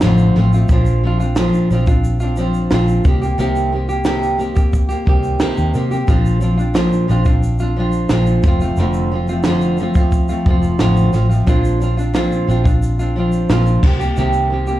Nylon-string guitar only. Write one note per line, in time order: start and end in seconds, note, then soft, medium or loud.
0.03 0.36 F2 medium
0.03 0.36 D3 medium
0.03 0.35 F3 loud
0.03 0.37 A3 medium
0.03 0.37 C4 loud
0.03 0.37 F4 loud
0.37 0.53 F3 medium
0.37 0.54 A3 medium
0.37 0.54 C4 medium
0.37 0.53 F4 medium
0.54 0.70 F3 soft
0.54 0.71 A3 medium
0.54 0.71 C4 medium
0.54 0.70 F4 medium
0.71 1.04 A#2 medium
0.71 1.02 F3 medium
0.71 1.03 C4 medium
0.71 1.04 D4 medium
0.71 1.05 F4 loud
1.03 1.20 F3 medium
1.03 1.21 C4 medium
1.03 1.21 D4 medium
1.03 1.18 F4 medium
1.20 1.37 C4 soft
1.20 1.38 D4 medium
1.20 1.36 F4 medium
1.37 1.71 A#2 medium
1.37 1.69 F3 medium
1.37 1.71 C4 loud
1.37 1.72 D4 loud
1.37 1.72 F4 loud
1.71 1.87 F3 medium
1.71 1.88 C4 medium
1.71 1.88 D4 medium
1.71 1.86 F4 medium
1.88 2.23 C4 medium
1.88 2.21 D4 medium
1.88 2.19 F4 medium
2.20 2.38 D4 medium
2.20 2.37 F4 medium
2.24 2.37 C4 medium
2.37 2.71 F3 medium
2.37 2.71 C4 medium
2.37 2.72 D4 medium
2.37 2.73 F4 medium
2.71 3.05 A#2 medium
2.71 3.04 F3 medium
2.71 3.06 C4 loud
2.71 3.06 D4 medium
2.71 3.06 F4 medium
3.05 3.22 D#3 medium
3.05 3.22 A#3 medium
3.05 3.22 C4 medium
3.05 3.20 G4 medium
3.22 3.38 A#3 soft
3.22 3.39 C4 soft
3.22 3.39 G4 medium
3.38 3.72 C3 medium
3.38 3.71 D#3 medium
3.38 3.72 A#3 medium
3.38 3.73 C4 medium
3.38 3.73 G4 loud
3.72 3.89 D#3 medium
3.72 3.90 A#3 medium
3.72 3.89 C4 medium
3.72 3.88 G4 medium
3.89 4.05 A#3 medium
3.89 4.05 C4 soft
3.89 4.06 G4 medium
4.05 4.39 C3 medium
4.05 4.37 D#3 medium
4.05 4.38 A#3 loud
4.05 4.39 C4 loud
4.05 4.40 G4 loud
4.38 4.56 D#3 medium
4.38 4.56 A#3 medium
4.38 4.55 C4 medium
4.38 4.54 G4 medium
4.55 4.91 A#3 soft
4.55 4.89 C4 medium
4.55 4.88 G4 medium
4.89 5.06 A#3 soft
4.89 5.07 C4 medium
4.89 5.06 G4 medium
5.06 5.40 D#3 medium
5.06 5.40 A#3 medium
5.06 5.41 C4 medium
5.06 5.41 G4 medium
5.40 5.74 C3 medium
5.40 5.72 D#3 medium
5.40 5.74 A#3 loud
5.40 5.75 C4 medium
5.40 5.75 G4 medium
5.74 5.91 D#3 medium
5.74 5.92 A#3 medium
5.74 5.91 C4 medium
5.74 5.90 G4 medium
5.91 6.08 A#3 soft
5.91 6.08 C4 medium
5.91 6.08 G4 medium
6.07 6.41 A#2 medium
6.07 6.39 F3 medium
6.07 6.41 C4 medium
6.07 6.42 D4 medium
6.07 6.42 F4 medium
6.40 6.58 F3 medium
6.40 6.59 C4 medium
6.40 6.58 D4 medium
6.40 6.56 F4 medium
6.57 6.74 C4 soft
6.57 6.74 D4 medium
6.57 6.75 F4 medium
6.74 7.09 A#2 medium
6.74 7.07 F3 medium
6.74 7.08 C4 medium
6.74 7.09 D4 medium
6.74 7.10 F4 loud
7.08 7.25 F3 medium
7.08 7.26 C4 medium
7.08 7.26 D4 medium
7.08 7.24 F4 medium
7.25 7.61 C4 soft
7.25 7.60 D4 medium
7.25 7.59 F4 medium
7.60 7.77 C4 soft
7.60 7.78 D4 medium
7.60 7.77 F4 medium
7.76 8.10 F3 medium
7.76 8.11 C4 medium
7.76 8.11 D4 medium
7.76 8.12 F4 medium
8.10 8.44 A#2 medium
8.10 8.43 F3 medium
8.10 8.45 C4 loud
8.10 8.45 D4 medium
8.10 8.45 F4 loud
8.44 8.61 F3 medium
8.44 8.62 A3 medium
8.44 8.61 C4 medium
8.44 8.60 F4 medium
8.62 8.78 F3 soft
8.62 8.79 A3 medium
8.62 8.79 C4 medium
8.62 8.78 F4 medium
8.78 9.12 F2 medium
8.78 9.12 D3 medium
8.78 9.10 F3 medium
8.78 9.12 A3 loud
8.78 9.13 C4 medium
8.78 9.13 F4 medium
9.12 9.28 F3 medium
9.12 9.29 A3 medium
9.12 9.29 C4 medium
9.12 9.28 F4 medium
9.29 9.46 F3 soft
9.29 9.46 A3 soft
9.29 9.46 C4 medium
9.29 9.45 F4 medium
9.46 9.79 F2 medium
9.46 9.79 D3 medium
9.46 9.79 F3 medium
9.46 9.79 A3 medium
9.46 9.80 C4 medium
9.46 9.80 F4 medium
9.80 9.96 F3 medium
9.80 9.96 A3 medium
9.80 9.97 C4 medium
9.80 9.95 F4 medium
9.96 10.31 F3 medium
9.96 10.30 A3 soft
9.96 10.29 C4 medium
9.96 10.28 F4 medium
10.29 10.46 F3 medium
10.29 10.46 A3 medium
10.29 10.47 C4 medium
10.29 10.46 F4 medium
10.47 10.79 F3 medium
10.47 10.79 A3 medium
10.47 10.80 C4 medium
10.47 10.80 F4 medium
10.79 11.13 F2 medium
10.79 11.13 D3 loud
10.79 11.11 F3 loud
10.79 11.13 A3 loud
10.79 11.14 C4 medium
10.79 11.14 F4 loud
11.13 11.30 F3 medium
11.13 11.30 A3 medium
11.13 11.29 C4 medium
11.13 11.28 F4 medium
11.29 11.46 F3 medium
11.29 11.47 A3 soft
11.29 11.46 C4 medium
11.29 11.47 F4 medium
11.47 11.80 A#2 medium
11.47 11.79 F3 medium
11.47 11.80 C4 medium
11.47 11.81 D4 loud
11.47 11.82 F4 medium
11.80 11.97 F3 medium
11.80 11.98 C4 medium
11.80 11.98 D4 medium
11.80 11.96 F4 medium
11.97 12.14 C4 soft
11.97 12.14 D4 medium
11.97 12.14 F4 medium
12.14 12.48 A#2 loud
12.14 12.46 F3 medium
12.14 12.47 C4 loud
12.14 12.48 D4 loud
12.14 12.49 F4 loud
12.47 12.64 F3 medium
12.47 12.65 C4 medium
12.47 12.65 D4 medium
12.47 12.63 F4 medium
12.64 13.00 C4 medium
12.64 12.99 D4 medium
12.64 12.98 F4 medium
12.99 13.16 C4 medium
12.99 13.16 D4 medium
12.99 13.16 F4 medium
13.16 13.49 F3 medium
13.16 13.50 C4 medium
13.16 13.50 D4 medium
13.16 13.51 F4 medium
13.50 13.83 A#2 medium
13.50 13.83 F3 medium
13.50 13.83 C4 medium
13.50 13.84 D4 loud
13.50 13.84 F4 loud
13.83 14.00 D#3 medium
13.83 14.00 A#3 medium
13.83 14.00 C4 medium
13.83 13.98 G4 medium
14.00 14.17 A#3 medium
14.00 14.17 C4 soft
14.00 14.16 G4 medium
14.17 14.50 C3 medium
14.17 14.49 D#3 medium
14.17 14.50 A#3 medium
14.17 14.51 C4 medium
14.17 14.51 G4 medium
14.50 14.67 D#3 medium
14.50 14.68 A#3 medium
14.50 14.68 C4 medium
14.50 14.66 G4 medium
14.67 14.80 A#3 medium
14.67 14.80 C4 medium
14.67 14.80 G4 medium